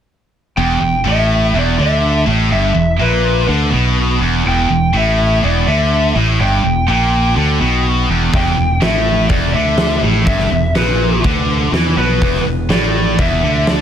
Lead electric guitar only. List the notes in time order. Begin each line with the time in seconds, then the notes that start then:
0.57 G5
1.08 E5
1.59 D5
1.82 E5
2.52 E5
3.01 B4
4.48 G5
4.97 E5
5.44 D5
5.67 E5
6.41 G5
6.88 G5
8.36 G5
8.83 E5
9.29 D5
9.53 E5
10.26 E5
10.76 B4
11.98 B4
12.71 D5
13.20 E5
13.70 D5